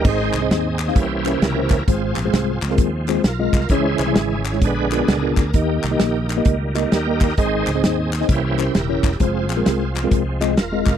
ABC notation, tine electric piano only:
X:1
M:4/4
L:1/16
Q:"Swing" 1/4=131
K:Ab
V:1 name="Tine electric piano"
[CEAce]2 z [CEAce]2 z2 [CEAcf] z2 [D=EGBc]2 z [DEGBc]2 z | [A,CFAc]2 z [A,CFAc]2 z2 [A,CFAB]2 z [A,CFAc]2 z [A,CFAe]2 z | [A,D_FAd]2 z [A,DFA_f]2 z2 [A,DFAd] z2 [_C=D=FAB]2 z [CDFAB]2 z | [B,EGBe]2 z [B,EGBe]2 z2 [B,EGBe]2 z [B,EGBe]2 z [B,EGBe]2 z |
[CEAce]2 z [CEAce]2 z2 [CEAce] z2 [D=EGBc]2 z [DEGBd]2 z | [A,CFAc]2 z [A,CFAB]2 z2 [A,CFAB]2 z [A,CFAe]2 z [A,CFAe]2 z |]
V:2 name="Tine electric piano" clef=bass
A,,6 z2 C,6 z2 | A,,6 z8 z2 | D,6 z2 B,,6 z2 | E,6 z8 z2 |
A,,6 z2 C,6 z2 | z16 |]